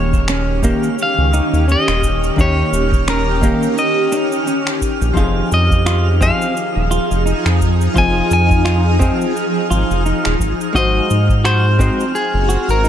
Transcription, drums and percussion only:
0.13 kick loud
0.13 cabasa soft
0.28 finger snap medium
0.28 cabasa soft
0.63 kick loud
0.63 cabasa medium
0.83 cabasa soft
0.99 cabasa soft
1.34 cabasa medium
1.54 cabasa soft
1.69 cabasa soft
1.88 finger snap medium
1.88 cabasa soft
2.02 kick medium
2.02 cabasa medium
2.24 cabasa soft
2.37 kick loud
2.37 cabasa soft
2.74 cabasa medium
2.92 kick loud
2.92 cabasa soft
3.08 finger snap medium
3.08 cabasa soft
3.42 kick loud
3.42 cabasa medium
3.63 cabasa soft
3.78 cabasa soft
4.12 cabasa medium
4.32 cabasa soft
4.47 cabasa soft
4.67 finger snap medium
4.67 cabasa soft
4.81 kick medium
4.81 cabasa medium
5.02 cabasa soft
5.16 kick loud
5.16 cabasa soft
5.52 cabasa medium
5.71 kick loud
5.71 cabasa soft
5.86 finger snap medium
5.86 cabasa soft
6.21 kick loud
6.21 cabasa medium
6.42 cabasa soft
6.57 cabasa soft
6.92 cabasa medium
7.11 cabasa soft
7.27 cabasa soft
7.46 finger snap medium
7.46 cabasa soft
7.60 kick medium
7.60 cabasa medium
7.81 cabasa soft
7.96 kick loud
7.96 cabasa soft
8.31 cabasa medium
8.50 kick loud
8.50 cabasa soft
8.66 finger snap medium
8.66 cabasa soft
9.00 kick loud
9.00 cabasa medium
9.21 cabasa soft
9.37 cabasa soft
9.71 cabasa medium
9.91 cabasa soft
10.06 cabasa soft
10.25 finger snap medium
10.25 cabasa soft
10.40 kick medium
10.40 cabasa medium
10.61 cabasa soft
10.74 kick loud
10.74 cabasa soft
11.11 cabasa medium
11.29 kick loud
11.29 cabasa soft
11.45 finger snap medium
11.45 cabasa soft
11.79 kick loud
11.79 cabasa medium
12.00 cabasa soft
12.16 cabasa soft
12.50 cabasa medium
12.69 cabasa soft
12.85 cabasa soft

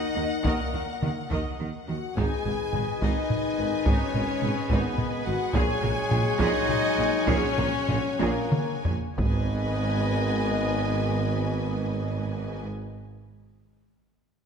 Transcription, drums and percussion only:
0.45 taiko loud
1.02 taiko mid medium
1.31 taiko medium
2.17 taiko loud
2.46 taiko low-mid soft
2.74 taiko low-mid medium
3.02 taiko medium
3.30 taiko low-mid medium
3.86 taiko loud
4.14 taiko low-mid soft
4.42 taiko low-mid medium
4.70 taiko medium
4.98 taiko low-mid medium
5.54 taiko loud
5.83 taiko low-mid medium
6.11 taiko low-mid medium
6.40 taiko medium
6.69 taiko low-mid medium
7.28 taiko loud
7.58 taiko low-mid medium
7.89 taiko low-mid medium
8.20 taiko high medium
8.52 taiko mid loud
8.85 taiko low loud
9.18 taiko loud

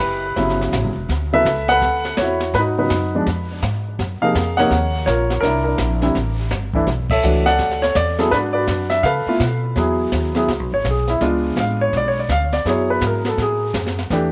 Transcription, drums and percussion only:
0.00 hi-hat pedal medium
0.36 brush sweep soft
0.36 kick soft
0.36 snare soft
0.49 snare soft
0.61 snare soft
0.73 kick soft
0.73 snare medium
0.73 hi-hat pedal medium
1.09 brush sweep soft
1.09 kick soft
1.09 snare soft
1.45 kick soft
1.45 snare medium
1.45 hi-hat pedal medium
1.68 snare soft
1.82 brush sweep soft
1.82 kick soft
1.82 snare soft
2.05 snare soft
2.17 kick soft
2.17 snare medium
2.17 hi-hat pedal soft
2.40 snare soft
2.54 brush sweep soft
2.54 kick soft
2.54 snare soft
2.90 kick soft
2.90 snare medium
2.90 hi-hat pedal medium
3.26 brush sweep soft
3.26 kick soft
3.26 snare soft
3.63 kick soft
3.63 snare medium
3.63 hi-hat pedal medium
3.99 brush sweep soft
3.99 kick soft
3.99 snare soft
4.35 kick soft
4.35 snare medium
4.35 hi-hat pedal medium
4.58 snare soft
4.71 brush sweep soft
4.71 kick soft
4.71 snare soft
5.07 kick soft
5.07 snare medium
5.07 hi-hat pedal medium
5.30 snare soft
5.43 brush sweep soft
5.43 kick soft
5.43 snare soft
5.78 kick soft
5.78 snare medium
5.78 hi-hat pedal medium
6.02 snare soft
6.15 brush sweep medium
6.15 kick soft
6.15 snare soft
6.51 kick soft
6.51 snare medium
6.51 hi-hat pedal medium
6.74 kick medium
6.87 brush sweep soft
6.87 snare soft
7.10 kick medium
7.10 ride medium
7.23 hi-hat pedal medium
7.46 snare soft
7.59 brush sweep soft
7.59 kick soft
7.59 snare soft
7.71 snare soft
7.83 snare soft
7.95 kick soft
7.95 snare medium
7.95 hi-hat pedal medium
8.19 snare soft
8.32 brush sweep soft
8.32 kick soft
8.32 snare soft
8.68 kick soft
8.68 snare medium
8.68 hi-hat pedal soft
8.90 snare soft
9.04 brush sweep soft
9.04 kick soft
9.04 snare soft
9.40 kick soft
9.40 snare medium
9.40 hi-hat pedal medium
9.76 brush sweep soft
9.76 kick soft
9.76 snare soft
10.12 kick soft
10.12 snare medium
10.12 hi-hat pedal medium
10.35 snare soft
10.48 brush sweep soft
10.48 kick soft
10.48 snare soft
10.85 kick soft
10.85 snare medium
10.85 hi-hat pedal soft
11.08 snare soft
11.21 brush sweep soft
11.21 kick soft
11.21 snare soft
11.57 kick soft
11.57 snare medium
11.57 hi-hat pedal soft
11.93 brush sweep soft
11.93 kick soft
11.93 snare soft
12.29 kick soft
12.29 snare medium
12.29 hi-hat pedal medium
12.53 snare soft
12.65 brush sweep soft
12.65 kick soft
12.65 snare soft
13.01 kick soft
13.01 snare medium
13.01 hi-hat pedal soft
13.25 snare soft
13.38 brush sweep soft
13.38 kick soft
13.38 snare soft
13.74 kick soft
13.74 snare medium
13.74 hi-hat pedal soft
13.86 snare soft
13.99 snare soft
14.10 brush sweep soft
14.10 kick soft
14.10 snare soft

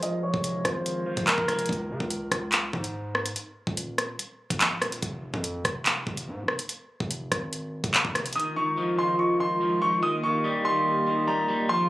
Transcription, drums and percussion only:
0.03 closed hi-hat medium
0.34 kick medium
0.44 closed hi-hat medium
0.65 kick medium
0.65 cross-stick medium
0.65 closed hi-hat medium
0.86 closed hi-hat medium
1.17 kick loud
1.17 closed hi-hat soft
1.27 clap loud
1.27 closed hi-hat medium
1.38 kick loud
1.48 cross-stick medium
1.48 closed hi-hat medium
1.59 closed hi-hat medium
1.66 kick loud
1.66 closed hi-hat medium
1.73 closed hi-hat soft
2.00 kick medium
2.10 closed hi-hat medium
2.32 kick medium
2.32 cross-stick medium
2.32 closed hi-hat medium
2.52 clap loud
2.52 closed hi-hat medium
2.73 kick loud
2.84 closed hi-hat medium
3.15 cross-stick medium
3.26 closed hi-hat medium
3.36 closed hi-hat medium
3.67 kick medium
3.77 closed hi-hat medium
3.98 cross-stick medium
3.98 closed hi-hat medium
4.19 closed hi-hat medium
4.50 kick loud
4.50 closed hi-hat medium
4.61 clap loud
4.61 closed hi-hat medium
4.82 cross-stick loud
4.82 closed hi-hat medium
4.92 closed hi-hat medium
5.03 kick loud
5.03 closed hi-hat medium
5.34 kick medium
5.44 closed hi-hat medium
5.65 kick medium
5.65 cross-stick medium
5.65 closed hi-hat medium
5.86 clap loud
5.86 closed hi-hat medium
6.07 kick loud
6.17 closed hi-hat medium
6.48 cross-stick medium
6.59 closed hi-hat medium
6.69 closed hi-hat medium
7.00 kick medium
7.11 closed hi-hat medium
7.32 kick medium
7.32 cross-stick medium
7.32 closed hi-hat medium
7.53 closed hi-hat medium
7.84 kick loud
7.84 closed hi-hat soft
7.94 clap loud
7.94 closed hi-hat medium
8.05 kick loud
8.15 cross-stick loud
8.15 closed hi-hat medium
8.26 closed hi-hat medium
8.33 closed hi-hat medium
8.40 closed hi-hat soft

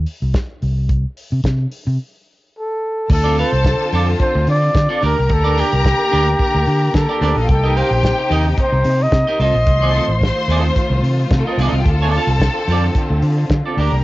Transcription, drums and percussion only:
0.07 open hi-hat medium
0.34 kick loud
0.34 snare medium
0.34 closed hi-hat medium
0.62 open hi-hat medium
0.89 kick loud
0.89 closed hi-hat medium
1.17 open hi-hat medium
1.44 kick medium
1.44 snare medium
1.44 closed hi-hat medium
1.72 open hi-hat medium
3.10 kick loud
3.10 crash loud
3.38 open hi-hat medium
3.64 kick loud
3.64 snare loud
3.64 closed hi-hat medium
3.93 open hi-hat medium
4.20 kick loud
4.20 closed hi-hat medium
4.47 open hi-hat medium
4.75 kick loud
4.75 snare loud
4.75 closed hi-hat medium
5.02 open hi-hat medium
5.29 kick loud
5.29 closed hi-hat medium
5.58 open hi-hat medium
5.84 kick loud
5.84 snare loud
5.84 closed hi-hat medium
6.12 open hi-hat medium
6.39 kick loud
6.39 closed hi-hat medium
6.67 open hi-hat medium
6.94 kick loud
6.94 snare loud
6.94 closed hi-hat medium
7.22 open hi-hat medium
7.49 kick loud
7.49 closed hi-hat medium
7.77 open hi-hat medium
8.03 kick loud
8.03 snare loud
8.03 closed hi-hat medium
8.31 open hi-hat medium
8.58 kick loud
8.58 closed hi-hat medium
8.84 open hi-hat medium
9.12 kick loud
9.12 snare loud
9.12 closed hi-hat medium
9.40 open hi-hat medium
9.67 kick loud
9.67 closed hi-hat medium
9.95 open hi-hat medium
10.21 kick loud
10.21 snare loud
10.21 closed hi-hat medium
10.50 open hi-hat medium
10.76 kick loud
10.76 closed hi-hat medium
11.04 open hi-hat medium
11.31 kick loud
11.31 snare loud
11.31 closed hi-hat medium
11.59 open hi-hat medium
11.86 kick loud
11.86 closed hi-hat medium
12.13 open hi-hat medium
12.40 kick loud
12.40 snare loud
12.40 closed hi-hat medium
12.68 open hi-hat medium
12.95 kick loud
12.95 closed hi-hat medium
13.22 open hi-hat medium
13.50 kick loud
13.50 snare loud
13.50 closed hi-hat medium
13.78 open hi-hat medium

